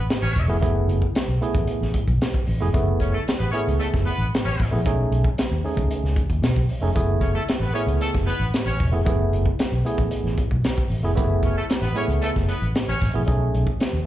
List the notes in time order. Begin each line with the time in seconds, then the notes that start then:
0.10 snare, closed hi-hat
0.22 A1 C#4 C#5
0.36 E1, kick, open hi-hat
0.47 F1 A3 B3 E4 G#4
0.61 F#1 A3 B3 E4 G#4, kick, closed hi-hat
0.88 F#1, closed hi-hat
1.02 kick
1.15 snare, closed hi-hat
1.28 B1
1.41 A3 B3 E4 G#4, closed hi-hat
1.55 A1, kick, closed hi-hat
1.67 closed hi-hat
1.81 A1, snare
1.94 kick, closed hi-hat
2.08 B1, kick, closed hi-hat
2.22 snare, closed hi-hat
2.34 kick
2.47 A1, open hi-hat
2.60 F1 A3 B3 E4 G#4
2.74 F#1 A3 B3 E4 G#4, kick, closed hi-hat
3.00 F#1 C#4 C#5, kick, closed hi-hat
3.13 A3 A4
3.28 snare, closed hi-hat
3.38 A1 B3 B4
3.51 A3 B3 C#4 E4 G#4 C#5, closed hi-hat
3.67 C#2, closed hi-hat
3.79 A3 A4, closed hi-hat
3.94 F#1, kick, snare
4.05 B3 B4, closed hi-hat
4.18 A1, closed hi-hat
4.35 snare, closed hi-hat
4.44 A1 C#4 C#5
4.59 A1, kick, snare, open hi-hat
4.71 A#1 A3 B3 E4 G#4
4.85 B1 A3 C#4 D#4 G#4, kick, closed hi-hat
5.11 B1, closed hi-hat
5.24 kick
5.38 snare, closed hi-hat
5.51 D#2
5.64 A3 C#4 D#4 G#4, open hi-hat
5.77 C#2, kick, closed hi-hat
5.91 closed hi-hat
6.04 C#2, snare
6.16 kick, closed hi-hat
6.30 D#2, kick, closed hi-hat
6.42 B2, snare, closed hi-hat
6.56 B1, kick
6.69 open hi-hat
6.81 F1 A3 C#4 D#4 G#4
6.95 F#1 A3 B3 E4 G#4, kick, closed hi-hat
7.21 F#1 C#4 C#5, kick, closed hi-hat
7.34 A3 A4
7.49 snare, closed hi-hat
7.60 A1 B3 B4
7.73 A3 B3 C#4 E4 G#4 C#5, closed hi-hat
7.87 C#2, closed hi-hat
8.01 A3 A4, closed hi-hat
8.14 F#1, kick, snare
8.26 B3 B4, closed hi-hat
8.40 A1, closed hi-hat
8.54 snare, closed hi-hat
8.66 A1 C#4 C#5
8.79 E1, kick, open hi-hat
8.92 F1 A3 B3 E4 G#4
9.05 F#1 A3 B3 E4 G#4, kick, closed hi-hat
9.33 F#1, closed hi-hat
9.46 kick
9.59 snare, closed hi-hat
9.72 B1
9.84 A3 B3 E4 G#4, closed hi-hat
9.98 A1, kick, closed hi-hat
10.11 closed hi-hat
10.24 A1, snare
10.38 kick, closed hi-hat
10.51 B1, kick
10.64 snare, closed hi-hat
10.78 kick
10.90 A1, open hi-hat
11.03 F1 A3 B3 E4 G#4
11.15 F#1 A3 B3 E4 G4, kick, closed hi-hat
11.24 G#4
11.43 F#1 C#4 C#5, kick, closed hi-hat
11.56 A3 A4
11.70 snare, closed hi-hat
11.82 A1 B3 B4
11.95 G#3 B3 C#4 E4 G#4 C#5, closed hi-hat
12.01 A3
12.08 C#2, closed hi-hat
12.22 A3 A4, closed hi-hat
12.36 F#1, kick, snare
12.48 B3 B4, closed hi-hat
12.62 A1, closed hi-hat
12.75 snare, closed hi-hat
12.88 A1 C#4 C#5
13.01 A1, kick, snare, open hi-hat
13.13 A#1 A3 B3 E4 G#4
13.26 B1 A3 C#4 D#4 G#4, kick, closed hi-hat
13.55 B1, closed hi-hat
13.67 kick
13.80 snare, closed hi-hat
13.93 D#2